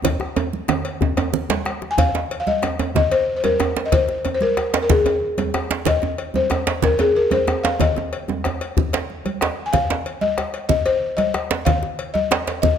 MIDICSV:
0, 0, Header, 1, 5, 480
1, 0, Start_track
1, 0, Tempo, 322754
1, 74, Time_signature, 12, 3, 24, 8
1, 19012, End_track
2, 0, Start_track
2, 0, Title_t, "Balafon"
2, 0, Program_c, 0, 12
2, 2837, Note_on_c, 0, 80, 77
2, 2947, Note_on_c, 0, 77, 99
2, 2949, Note_off_c, 0, 80, 0
2, 3550, Note_off_c, 0, 77, 0
2, 3568, Note_on_c, 0, 77, 66
2, 3675, Note_off_c, 0, 77, 0
2, 3678, Note_on_c, 0, 75, 85
2, 4383, Note_off_c, 0, 75, 0
2, 4401, Note_on_c, 0, 75, 98
2, 4509, Note_off_c, 0, 75, 0
2, 4637, Note_on_c, 0, 72, 98
2, 4987, Note_off_c, 0, 72, 0
2, 5005, Note_on_c, 0, 72, 61
2, 5113, Note_on_c, 0, 70, 85
2, 5115, Note_off_c, 0, 72, 0
2, 5734, Note_on_c, 0, 75, 59
2, 5753, Note_off_c, 0, 70, 0
2, 5840, Note_off_c, 0, 75, 0
2, 5842, Note_on_c, 0, 72, 91
2, 6444, Note_off_c, 0, 72, 0
2, 6462, Note_on_c, 0, 72, 62
2, 6564, Note_off_c, 0, 72, 0
2, 6571, Note_on_c, 0, 70, 80
2, 7158, Note_off_c, 0, 70, 0
2, 7176, Note_on_c, 0, 70, 67
2, 7281, Note_off_c, 0, 70, 0
2, 7298, Note_on_c, 0, 68, 87
2, 8431, Note_off_c, 0, 68, 0
2, 8740, Note_on_c, 0, 75, 93
2, 9402, Note_off_c, 0, 75, 0
2, 9451, Note_on_c, 0, 72, 77
2, 10165, Note_on_c, 0, 70, 82
2, 10189, Note_off_c, 0, 72, 0
2, 10411, Note_off_c, 0, 70, 0
2, 10413, Note_on_c, 0, 68, 82
2, 10655, Note_off_c, 0, 68, 0
2, 10655, Note_on_c, 0, 70, 76
2, 10760, Note_off_c, 0, 70, 0
2, 10884, Note_on_c, 0, 72, 83
2, 11355, Note_on_c, 0, 77, 89
2, 11377, Note_off_c, 0, 72, 0
2, 11465, Note_off_c, 0, 77, 0
2, 11607, Note_on_c, 0, 75, 76
2, 12107, Note_off_c, 0, 75, 0
2, 14365, Note_on_c, 0, 80, 66
2, 14467, Note_on_c, 0, 77, 96
2, 14474, Note_off_c, 0, 80, 0
2, 15190, Note_on_c, 0, 75, 88
2, 15214, Note_off_c, 0, 77, 0
2, 15878, Note_off_c, 0, 75, 0
2, 15895, Note_on_c, 0, 75, 97
2, 16144, Note_on_c, 0, 72, 97
2, 16154, Note_off_c, 0, 75, 0
2, 16608, Note_on_c, 0, 75, 96
2, 16644, Note_off_c, 0, 72, 0
2, 17329, Note_on_c, 0, 77, 95
2, 17363, Note_off_c, 0, 75, 0
2, 18051, Note_on_c, 0, 75, 87
2, 18083, Note_off_c, 0, 77, 0
2, 18752, Note_off_c, 0, 75, 0
2, 18770, Note_on_c, 0, 75, 90
2, 19012, Note_off_c, 0, 75, 0
2, 19012, End_track
3, 0, Start_track
3, 0, Title_t, "Bombo"
3, 62, Note_on_c, 9, 43, 90
3, 211, Note_off_c, 9, 43, 0
3, 309, Note_on_c, 9, 37, 73
3, 458, Note_off_c, 9, 37, 0
3, 1024, Note_on_c, 9, 37, 95
3, 1173, Note_off_c, 9, 37, 0
3, 1506, Note_on_c, 9, 43, 99
3, 1655, Note_off_c, 9, 43, 0
3, 1745, Note_on_c, 9, 37, 76
3, 1894, Note_off_c, 9, 37, 0
3, 2470, Note_on_c, 9, 37, 90
3, 2619, Note_off_c, 9, 37, 0
3, 2946, Note_on_c, 9, 43, 78
3, 3094, Note_off_c, 9, 43, 0
3, 3910, Note_on_c, 9, 37, 84
3, 4059, Note_off_c, 9, 37, 0
3, 4385, Note_on_c, 9, 43, 88
3, 4533, Note_off_c, 9, 43, 0
3, 5356, Note_on_c, 9, 37, 86
3, 5504, Note_off_c, 9, 37, 0
3, 5834, Note_on_c, 9, 43, 74
3, 5983, Note_off_c, 9, 43, 0
3, 6798, Note_on_c, 9, 37, 78
3, 6947, Note_off_c, 9, 37, 0
3, 7287, Note_on_c, 9, 43, 81
3, 7435, Note_off_c, 9, 43, 0
3, 8245, Note_on_c, 9, 37, 84
3, 8394, Note_off_c, 9, 37, 0
3, 8719, Note_on_c, 9, 43, 77
3, 8868, Note_off_c, 9, 43, 0
3, 9679, Note_on_c, 9, 37, 80
3, 9828, Note_off_c, 9, 37, 0
3, 10158, Note_on_c, 9, 43, 88
3, 10306, Note_off_c, 9, 43, 0
3, 11125, Note_on_c, 9, 37, 77
3, 11274, Note_off_c, 9, 37, 0
3, 11605, Note_on_c, 9, 43, 70
3, 11754, Note_off_c, 9, 43, 0
3, 11847, Note_on_c, 9, 37, 24
3, 11996, Note_off_c, 9, 37, 0
3, 12321, Note_on_c, 9, 37, 26
3, 12470, Note_off_c, 9, 37, 0
3, 12555, Note_on_c, 9, 37, 78
3, 12704, Note_off_c, 9, 37, 0
3, 13040, Note_on_c, 9, 43, 87
3, 13189, Note_off_c, 9, 43, 0
3, 13996, Note_on_c, 9, 37, 83
3, 14144, Note_off_c, 9, 37, 0
3, 14481, Note_on_c, 9, 43, 83
3, 14630, Note_off_c, 9, 43, 0
3, 15431, Note_on_c, 9, 37, 81
3, 15580, Note_off_c, 9, 37, 0
3, 15905, Note_on_c, 9, 43, 90
3, 16054, Note_off_c, 9, 43, 0
3, 16872, Note_on_c, 9, 37, 84
3, 17021, Note_off_c, 9, 37, 0
3, 17355, Note_on_c, 9, 43, 77
3, 17504, Note_off_c, 9, 43, 0
3, 18317, Note_on_c, 9, 37, 86
3, 18466, Note_off_c, 9, 37, 0
3, 18794, Note_on_c, 9, 43, 86
3, 18943, Note_off_c, 9, 43, 0
3, 19012, End_track
4, 0, Start_track
4, 0, Title_t, "Djembe"
4, 53, Note_on_c, 9, 62, 25
4, 53, Note_on_c, 9, 64, 77
4, 70, Note_on_c, 9, 63, 86
4, 202, Note_off_c, 9, 62, 0
4, 202, Note_off_c, 9, 64, 0
4, 219, Note_off_c, 9, 63, 0
4, 294, Note_on_c, 9, 62, 63
4, 294, Note_on_c, 9, 63, 58
4, 443, Note_off_c, 9, 62, 0
4, 443, Note_off_c, 9, 63, 0
4, 544, Note_on_c, 9, 63, 104
4, 693, Note_off_c, 9, 63, 0
4, 1015, Note_on_c, 9, 62, 72
4, 1028, Note_on_c, 9, 63, 110
4, 1164, Note_off_c, 9, 62, 0
4, 1177, Note_off_c, 9, 63, 0
4, 1499, Note_on_c, 9, 64, 82
4, 1515, Note_on_c, 9, 63, 96
4, 1648, Note_off_c, 9, 64, 0
4, 1663, Note_off_c, 9, 63, 0
4, 1737, Note_on_c, 9, 64, 40
4, 1752, Note_on_c, 9, 63, 112
4, 1886, Note_off_c, 9, 64, 0
4, 1900, Note_off_c, 9, 63, 0
4, 1971, Note_on_c, 9, 64, 47
4, 2120, Note_off_c, 9, 64, 0
4, 2219, Note_on_c, 9, 64, 52
4, 2229, Note_on_c, 9, 62, 101
4, 2368, Note_off_c, 9, 64, 0
4, 2378, Note_off_c, 9, 62, 0
4, 2460, Note_on_c, 9, 62, 60
4, 2609, Note_off_c, 9, 62, 0
4, 2705, Note_on_c, 9, 62, 61
4, 2854, Note_off_c, 9, 62, 0
4, 2940, Note_on_c, 9, 63, 72
4, 2940, Note_on_c, 9, 64, 69
4, 2948, Note_off_c, 9, 63, 0
4, 2948, Note_on_c, 9, 63, 83
4, 3089, Note_off_c, 9, 64, 0
4, 3097, Note_off_c, 9, 63, 0
4, 3188, Note_on_c, 9, 62, 49
4, 3195, Note_off_c, 9, 62, 0
4, 3195, Note_on_c, 9, 62, 74
4, 3344, Note_off_c, 9, 62, 0
4, 3670, Note_on_c, 9, 63, 59
4, 3818, Note_off_c, 9, 63, 0
4, 3904, Note_on_c, 9, 62, 75
4, 3918, Note_on_c, 9, 63, 76
4, 4053, Note_off_c, 9, 62, 0
4, 4066, Note_off_c, 9, 63, 0
4, 4156, Note_on_c, 9, 63, 90
4, 4305, Note_off_c, 9, 63, 0
4, 4393, Note_on_c, 9, 63, 76
4, 4393, Note_on_c, 9, 64, 79
4, 4401, Note_on_c, 9, 62, 76
4, 4542, Note_off_c, 9, 63, 0
4, 4542, Note_off_c, 9, 64, 0
4, 4549, Note_off_c, 9, 62, 0
4, 4636, Note_on_c, 9, 62, 55
4, 4784, Note_off_c, 9, 62, 0
4, 5110, Note_on_c, 9, 63, 60
4, 5122, Note_off_c, 9, 63, 0
4, 5122, Note_on_c, 9, 63, 73
4, 5270, Note_off_c, 9, 63, 0
4, 5348, Note_on_c, 9, 62, 80
4, 5358, Note_on_c, 9, 63, 103
4, 5496, Note_off_c, 9, 62, 0
4, 5507, Note_off_c, 9, 63, 0
4, 5599, Note_on_c, 9, 62, 78
4, 5748, Note_off_c, 9, 62, 0
4, 5834, Note_on_c, 9, 63, 73
4, 5834, Note_on_c, 9, 64, 72
4, 5982, Note_off_c, 9, 63, 0
4, 5982, Note_off_c, 9, 64, 0
4, 6074, Note_on_c, 9, 62, 58
4, 6223, Note_off_c, 9, 62, 0
4, 6327, Note_on_c, 9, 63, 76
4, 6475, Note_off_c, 9, 63, 0
4, 6560, Note_on_c, 9, 63, 56
4, 6708, Note_off_c, 9, 63, 0
4, 6801, Note_on_c, 9, 62, 72
4, 6950, Note_off_c, 9, 62, 0
4, 7047, Note_on_c, 9, 62, 94
4, 7196, Note_off_c, 9, 62, 0
4, 7283, Note_on_c, 9, 62, 75
4, 7283, Note_on_c, 9, 63, 81
4, 7283, Note_on_c, 9, 64, 78
4, 7432, Note_off_c, 9, 62, 0
4, 7432, Note_off_c, 9, 63, 0
4, 7432, Note_off_c, 9, 64, 0
4, 7523, Note_on_c, 9, 63, 78
4, 7528, Note_on_c, 9, 62, 55
4, 7672, Note_off_c, 9, 63, 0
4, 7677, Note_off_c, 9, 62, 0
4, 7999, Note_on_c, 9, 63, 52
4, 8010, Note_off_c, 9, 63, 0
4, 8010, Note_on_c, 9, 63, 75
4, 8159, Note_off_c, 9, 63, 0
4, 8239, Note_on_c, 9, 62, 77
4, 8249, Note_on_c, 9, 63, 69
4, 8388, Note_off_c, 9, 62, 0
4, 8397, Note_off_c, 9, 63, 0
4, 8487, Note_on_c, 9, 62, 98
4, 8636, Note_off_c, 9, 62, 0
4, 8710, Note_on_c, 9, 63, 69
4, 8710, Note_on_c, 9, 64, 65
4, 8725, Note_on_c, 9, 62, 73
4, 8859, Note_off_c, 9, 63, 0
4, 8859, Note_off_c, 9, 64, 0
4, 8874, Note_off_c, 9, 62, 0
4, 8951, Note_on_c, 9, 62, 54
4, 8966, Note_on_c, 9, 63, 78
4, 9100, Note_off_c, 9, 62, 0
4, 9115, Note_off_c, 9, 63, 0
4, 9427, Note_on_c, 9, 63, 55
4, 9453, Note_off_c, 9, 63, 0
4, 9453, Note_on_c, 9, 63, 72
4, 9602, Note_off_c, 9, 63, 0
4, 9664, Note_on_c, 9, 62, 71
4, 9688, Note_on_c, 9, 63, 88
4, 9813, Note_off_c, 9, 62, 0
4, 9837, Note_off_c, 9, 63, 0
4, 9919, Note_on_c, 9, 62, 95
4, 10068, Note_off_c, 9, 62, 0
4, 10148, Note_on_c, 9, 63, 73
4, 10148, Note_on_c, 9, 64, 70
4, 10164, Note_on_c, 9, 62, 75
4, 10297, Note_off_c, 9, 63, 0
4, 10297, Note_off_c, 9, 64, 0
4, 10313, Note_off_c, 9, 62, 0
4, 10388, Note_on_c, 9, 62, 49
4, 10403, Note_on_c, 9, 63, 80
4, 10537, Note_off_c, 9, 62, 0
4, 10551, Note_off_c, 9, 63, 0
4, 10869, Note_on_c, 9, 63, 60
4, 10885, Note_off_c, 9, 63, 0
4, 10885, Note_on_c, 9, 63, 76
4, 11034, Note_off_c, 9, 63, 0
4, 11116, Note_on_c, 9, 62, 70
4, 11122, Note_on_c, 9, 63, 71
4, 11265, Note_off_c, 9, 62, 0
4, 11271, Note_off_c, 9, 63, 0
4, 11371, Note_on_c, 9, 62, 102
4, 11520, Note_off_c, 9, 62, 0
4, 11600, Note_on_c, 9, 62, 23
4, 11600, Note_on_c, 9, 63, 74
4, 11600, Note_on_c, 9, 64, 77
4, 11611, Note_off_c, 9, 62, 0
4, 11611, Note_on_c, 9, 62, 68
4, 11748, Note_off_c, 9, 63, 0
4, 11748, Note_off_c, 9, 64, 0
4, 11760, Note_off_c, 9, 62, 0
4, 11845, Note_on_c, 9, 62, 57
4, 11861, Note_on_c, 9, 63, 69
4, 11994, Note_off_c, 9, 62, 0
4, 12010, Note_off_c, 9, 63, 0
4, 12089, Note_on_c, 9, 62, 23
4, 12237, Note_off_c, 9, 62, 0
4, 12318, Note_on_c, 9, 63, 58
4, 12331, Note_off_c, 9, 63, 0
4, 12331, Note_on_c, 9, 63, 75
4, 12480, Note_off_c, 9, 63, 0
4, 12566, Note_on_c, 9, 62, 71
4, 12583, Note_on_c, 9, 63, 75
4, 12714, Note_off_c, 9, 62, 0
4, 12732, Note_off_c, 9, 63, 0
4, 12805, Note_on_c, 9, 62, 24
4, 12954, Note_off_c, 9, 62, 0
4, 13041, Note_on_c, 9, 63, 76
4, 13041, Note_on_c, 9, 64, 78
4, 13190, Note_off_c, 9, 63, 0
4, 13190, Note_off_c, 9, 64, 0
4, 13284, Note_on_c, 9, 62, 53
4, 13294, Note_off_c, 9, 62, 0
4, 13294, Note_on_c, 9, 62, 102
4, 13443, Note_off_c, 9, 62, 0
4, 13762, Note_on_c, 9, 63, 56
4, 13910, Note_off_c, 9, 63, 0
4, 14005, Note_on_c, 9, 62, 73
4, 14013, Note_off_c, 9, 62, 0
4, 14013, Note_on_c, 9, 62, 92
4, 14162, Note_off_c, 9, 62, 0
4, 14485, Note_on_c, 9, 63, 72
4, 14485, Note_on_c, 9, 64, 68
4, 14633, Note_off_c, 9, 63, 0
4, 14633, Note_off_c, 9, 64, 0
4, 14727, Note_on_c, 9, 62, 57
4, 14729, Note_off_c, 9, 62, 0
4, 14729, Note_on_c, 9, 62, 89
4, 14878, Note_off_c, 9, 62, 0
4, 15200, Note_on_c, 9, 63, 55
4, 15349, Note_off_c, 9, 63, 0
4, 15437, Note_on_c, 9, 62, 74
4, 15586, Note_off_c, 9, 62, 0
4, 15909, Note_on_c, 9, 63, 73
4, 15909, Note_on_c, 9, 64, 77
4, 16058, Note_off_c, 9, 63, 0
4, 16058, Note_off_c, 9, 64, 0
4, 16152, Note_on_c, 9, 62, 52
4, 16301, Note_off_c, 9, 62, 0
4, 16625, Note_on_c, 9, 63, 55
4, 16774, Note_off_c, 9, 63, 0
4, 16868, Note_on_c, 9, 62, 82
4, 17017, Note_off_c, 9, 62, 0
4, 17113, Note_on_c, 9, 62, 98
4, 17262, Note_off_c, 9, 62, 0
4, 17351, Note_on_c, 9, 62, 70
4, 17352, Note_on_c, 9, 63, 73
4, 17352, Note_on_c, 9, 64, 71
4, 17500, Note_off_c, 9, 62, 0
4, 17500, Note_off_c, 9, 63, 0
4, 17500, Note_off_c, 9, 64, 0
4, 17588, Note_on_c, 9, 62, 55
4, 17737, Note_off_c, 9, 62, 0
4, 18069, Note_on_c, 9, 63, 64
4, 18218, Note_off_c, 9, 63, 0
4, 18307, Note_on_c, 9, 62, 78
4, 18317, Note_off_c, 9, 62, 0
4, 18317, Note_on_c, 9, 62, 107
4, 18465, Note_off_c, 9, 62, 0
4, 18551, Note_on_c, 9, 62, 76
4, 18700, Note_off_c, 9, 62, 0
4, 18788, Note_on_c, 9, 63, 77
4, 18788, Note_on_c, 9, 64, 80
4, 18937, Note_off_c, 9, 63, 0
4, 18937, Note_off_c, 9, 64, 0
4, 19012, End_track
5, 0, Start_track
5, 0, Title_t, "Drums"
5, 68, Note_on_c, 9, 56, 65
5, 71, Note_on_c, 9, 64, 70
5, 217, Note_off_c, 9, 56, 0
5, 220, Note_off_c, 9, 64, 0
5, 311, Note_on_c, 9, 63, 23
5, 459, Note_off_c, 9, 63, 0
5, 541, Note_on_c, 9, 56, 52
5, 553, Note_on_c, 9, 63, 26
5, 690, Note_off_c, 9, 56, 0
5, 702, Note_off_c, 9, 63, 0
5, 792, Note_on_c, 9, 63, 55
5, 941, Note_off_c, 9, 63, 0
5, 1023, Note_on_c, 9, 63, 25
5, 1023, Note_on_c, 9, 64, 77
5, 1025, Note_on_c, 9, 56, 55
5, 1171, Note_off_c, 9, 63, 0
5, 1171, Note_off_c, 9, 64, 0
5, 1174, Note_off_c, 9, 56, 0
5, 1261, Note_on_c, 9, 56, 50
5, 1410, Note_off_c, 9, 56, 0
5, 1742, Note_on_c, 9, 56, 51
5, 1746, Note_on_c, 9, 63, 22
5, 1891, Note_off_c, 9, 56, 0
5, 1895, Note_off_c, 9, 63, 0
5, 1986, Note_on_c, 9, 64, 74
5, 2135, Note_off_c, 9, 64, 0
5, 2229, Note_on_c, 9, 63, 60
5, 2231, Note_on_c, 9, 56, 48
5, 2378, Note_off_c, 9, 63, 0
5, 2380, Note_off_c, 9, 56, 0
5, 2474, Note_on_c, 9, 56, 45
5, 2622, Note_off_c, 9, 56, 0
5, 2714, Note_on_c, 9, 63, 26
5, 2863, Note_off_c, 9, 63, 0
5, 2949, Note_on_c, 9, 64, 65
5, 2955, Note_on_c, 9, 56, 65
5, 3098, Note_off_c, 9, 64, 0
5, 3103, Note_off_c, 9, 56, 0
5, 3438, Note_on_c, 9, 56, 51
5, 3587, Note_off_c, 9, 56, 0
5, 3671, Note_on_c, 9, 63, 57
5, 3820, Note_off_c, 9, 63, 0
5, 3914, Note_on_c, 9, 56, 55
5, 4063, Note_off_c, 9, 56, 0
5, 4156, Note_on_c, 9, 56, 50
5, 4304, Note_off_c, 9, 56, 0
5, 4400, Note_on_c, 9, 64, 67
5, 4549, Note_off_c, 9, 64, 0
5, 4632, Note_on_c, 9, 56, 52
5, 4780, Note_off_c, 9, 56, 0
5, 5112, Note_on_c, 9, 56, 47
5, 5116, Note_on_c, 9, 63, 56
5, 5261, Note_off_c, 9, 56, 0
5, 5265, Note_off_c, 9, 63, 0
5, 5359, Note_on_c, 9, 56, 47
5, 5367, Note_on_c, 9, 63, 22
5, 5507, Note_off_c, 9, 56, 0
5, 5516, Note_off_c, 9, 63, 0
5, 5609, Note_on_c, 9, 63, 24
5, 5758, Note_off_c, 9, 63, 0
5, 5832, Note_on_c, 9, 56, 59
5, 5838, Note_on_c, 9, 64, 67
5, 5980, Note_off_c, 9, 56, 0
5, 5987, Note_off_c, 9, 64, 0
5, 6315, Note_on_c, 9, 56, 48
5, 6463, Note_off_c, 9, 56, 0
5, 6552, Note_on_c, 9, 63, 52
5, 6700, Note_off_c, 9, 63, 0
5, 6798, Note_on_c, 9, 56, 47
5, 6946, Note_off_c, 9, 56, 0
5, 7043, Note_on_c, 9, 56, 50
5, 7192, Note_off_c, 9, 56, 0
5, 7279, Note_on_c, 9, 64, 70
5, 7428, Note_off_c, 9, 64, 0
5, 7521, Note_on_c, 9, 56, 48
5, 7670, Note_off_c, 9, 56, 0
5, 7997, Note_on_c, 9, 63, 60
5, 8001, Note_on_c, 9, 56, 54
5, 8146, Note_off_c, 9, 63, 0
5, 8150, Note_off_c, 9, 56, 0
5, 8239, Note_on_c, 9, 63, 23
5, 8243, Note_on_c, 9, 56, 48
5, 8388, Note_off_c, 9, 63, 0
5, 8391, Note_off_c, 9, 56, 0
5, 8479, Note_on_c, 9, 63, 24
5, 8627, Note_off_c, 9, 63, 0
5, 8706, Note_on_c, 9, 64, 71
5, 8720, Note_on_c, 9, 56, 64
5, 8855, Note_off_c, 9, 64, 0
5, 8869, Note_off_c, 9, 56, 0
5, 9196, Note_on_c, 9, 56, 51
5, 9345, Note_off_c, 9, 56, 0
5, 9431, Note_on_c, 9, 63, 55
5, 9580, Note_off_c, 9, 63, 0
5, 9674, Note_on_c, 9, 56, 49
5, 9823, Note_off_c, 9, 56, 0
5, 9917, Note_on_c, 9, 56, 48
5, 10066, Note_off_c, 9, 56, 0
5, 10150, Note_on_c, 9, 64, 70
5, 10299, Note_off_c, 9, 64, 0
5, 10394, Note_on_c, 9, 56, 54
5, 10543, Note_off_c, 9, 56, 0
5, 10871, Note_on_c, 9, 63, 55
5, 10877, Note_on_c, 9, 56, 52
5, 11020, Note_off_c, 9, 63, 0
5, 11026, Note_off_c, 9, 56, 0
5, 11120, Note_on_c, 9, 63, 23
5, 11121, Note_on_c, 9, 56, 47
5, 11269, Note_off_c, 9, 56, 0
5, 11269, Note_off_c, 9, 63, 0
5, 11364, Note_on_c, 9, 63, 24
5, 11512, Note_off_c, 9, 63, 0
5, 11593, Note_on_c, 9, 64, 68
5, 11608, Note_on_c, 9, 56, 61
5, 11742, Note_off_c, 9, 64, 0
5, 11757, Note_off_c, 9, 56, 0
5, 12086, Note_on_c, 9, 56, 53
5, 12235, Note_off_c, 9, 56, 0
5, 12324, Note_on_c, 9, 63, 54
5, 12473, Note_off_c, 9, 63, 0
5, 12567, Note_on_c, 9, 56, 49
5, 12715, Note_off_c, 9, 56, 0
5, 12807, Note_on_c, 9, 56, 47
5, 12956, Note_off_c, 9, 56, 0
5, 13051, Note_on_c, 9, 63, 21
5, 13051, Note_on_c, 9, 64, 65
5, 13200, Note_off_c, 9, 63, 0
5, 13200, Note_off_c, 9, 64, 0
5, 13284, Note_on_c, 9, 56, 49
5, 13287, Note_on_c, 9, 63, 23
5, 13433, Note_off_c, 9, 56, 0
5, 13436, Note_off_c, 9, 63, 0
5, 13530, Note_on_c, 9, 63, 20
5, 13679, Note_off_c, 9, 63, 0
5, 13766, Note_on_c, 9, 56, 45
5, 13769, Note_on_c, 9, 63, 56
5, 13915, Note_off_c, 9, 56, 0
5, 13918, Note_off_c, 9, 63, 0
5, 14003, Note_on_c, 9, 56, 42
5, 14152, Note_off_c, 9, 56, 0
5, 14477, Note_on_c, 9, 64, 61
5, 14483, Note_on_c, 9, 56, 49
5, 14625, Note_off_c, 9, 64, 0
5, 14631, Note_off_c, 9, 56, 0
5, 14961, Note_on_c, 9, 56, 41
5, 15110, Note_off_c, 9, 56, 0
5, 15188, Note_on_c, 9, 63, 52
5, 15336, Note_off_c, 9, 63, 0
5, 15434, Note_on_c, 9, 56, 43
5, 15583, Note_off_c, 9, 56, 0
5, 15672, Note_on_c, 9, 56, 45
5, 15820, Note_off_c, 9, 56, 0
5, 15901, Note_on_c, 9, 64, 71
5, 16050, Note_off_c, 9, 64, 0
5, 16147, Note_on_c, 9, 56, 49
5, 16296, Note_off_c, 9, 56, 0
5, 16628, Note_on_c, 9, 56, 46
5, 16632, Note_on_c, 9, 63, 61
5, 16776, Note_off_c, 9, 56, 0
5, 16781, Note_off_c, 9, 63, 0
5, 16868, Note_on_c, 9, 56, 45
5, 16879, Note_on_c, 9, 63, 25
5, 17017, Note_off_c, 9, 56, 0
5, 17027, Note_off_c, 9, 63, 0
5, 17121, Note_on_c, 9, 63, 26
5, 17270, Note_off_c, 9, 63, 0
5, 17345, Note_on_c, 9, 56, 64
5, 17349, Note_on_c, 9, 64, 70
5, 17494, Note_off_c, 9, 56, 0
5, 17498, Note_off_c, 9, 64, 0
5, 17829, Note_on_c, 9, 56, 51
5, 17978, Note_off_c, 9, 56, 0
5, 18071, Note_on_c, 9, 63, 55
5, 18220, Note_off_c, 9, 63, 0
5, 18315, Note_on_c, 9, 56, 47
5, 18463, Note_off_c, 9, 56, 0
5, 18555, Note_on_c, 9, 56, 47
5, 18704, Note_off_c, 9, 56, 0
5, 18786, Note_on_c, 9, 64, 72
5, 18934, Note_off_c, 9, 64, 0
5, 19012, End_track
0, 0, End_of_file